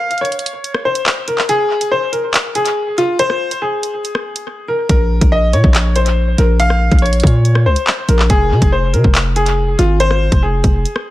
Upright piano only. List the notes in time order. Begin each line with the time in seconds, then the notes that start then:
Already playing: F5
0.21 C#5
0.85 C5
1.28 A#4
1.49 G#4
1.92 C5
2.13 A#4
2.55 G#4
2.98 F4
3.19 C5
3.62 G#4
4.68 A#4
4.90 A#4
5.32 D#5
5.53 C#5
5.96 C5
6.38 A#4
6.60 F5
7.02 C#5
7.66 C5
8.09 A#4
8.30 G#4
8.72 C5
8.93 A#4
9.36 G#4
9.79 F4
10.00 C5
10.43 G#4